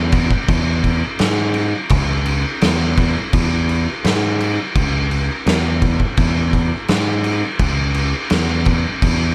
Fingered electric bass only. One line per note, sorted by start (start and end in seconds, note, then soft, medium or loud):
0.00 0.30 E2 medium
0.49 1.01 E2 medium
1.20 1.72 G#2 loud
1.91 2.44 C#2 medium
2.62 3.15 E2 medium
3.33 3.86 E2 medium
4.04 4.57 G#2 medium
4.76 5.28 C#2 loud
5.46 5.99 E2 loud
6.18 6.71 E2 loud
6.89 7.42 G#2 medium
7.60 8.13 C#2 loud
8.31 8.84 E2 medium
9.02 9.35 E2 medium